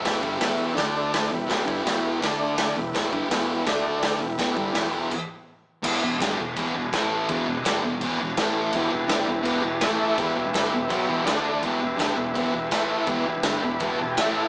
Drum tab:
CC |--------|--------|--------|----x---|
HH |o-o-o-o-|o-o-o-o-|o-o-o-o-|o-o-----|
SD |o-o-o-o-|o-o-o-o-|o-o-o-o-|o-o-----|
BD |oo--o---|oo--o---|oo--o---|oo--o---|

CC |x-x-x-x-|x-x-x-x-|x-x-x-x-|x-x-x-x-|
HH |--------|--------|--------|--------|
SD |--o---o-|--o---o-|--o---o-|--o---o-|
BD |o-o-o-o-|o-o-o-o-|o-o-o-o-|o-o-o-o-|

CC |x-x-x-x-|x-x-x-x-|
HH |--------|--------|
SD |--o---o-|--o---o-|
BD |o-o-o-o-|o-o-o-o-|